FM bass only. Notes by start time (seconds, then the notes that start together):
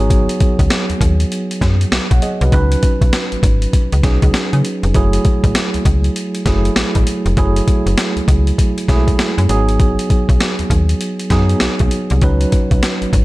Already playing: G#1
0.59 C#2
0.90 D#2
1.01 D#2
1.61 F#2
1.92 B1
2.11 B1
2.41 C2
2.52 C#2
3.01 B1
3.32 G#1
3.43 G#1
3.93 C#2
4.03 B1
4.23 C#2
4.53 C#3
4.83 F1
4.95 F#1
5.44 A1
5.75 C#2
5.85 C#2
6.46 F#1
6.76 A1
6.96 A1
7.26 F1
7.37 F#1
7.86 F#1
8.16 C#2
8.28 C#2
8.88 B1
9.38 F#2
9.49 G#1
10.29 B1
10.59 D#2
10.70 D#2
11.30 F#2
11.61 B1
11.80 B1
12.11 C2
12.22 C#2
12.71 B1
13.02 G#1
13.13 G#1